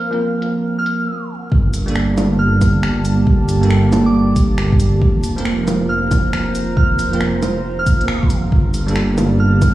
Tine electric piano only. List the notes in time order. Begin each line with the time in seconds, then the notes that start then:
Already playing: C4 A#4
0.11 F3 A#3 C4 A#4
0.38 F3 A#3
0.44 C4 A#4
1.86 G3 A#3 D4 A4
2.13 G3 A#3
2.19 D4 A4
3.61 G3 A#3 D4
3.65 A4
3.88 G3 A#3
3.94 D4 A4
5.36 F3 A#3 C4 A#4
5.63 F3 A#3
5.69 C4 A#4
7.11 F3 A#3 C4
7.16 A#4
7.97 F3 A#3
8.03 C4 A#4
8.87 G3 A#3 D4
8.91 A4
9.14 G3 A#3
9.19 D4 A4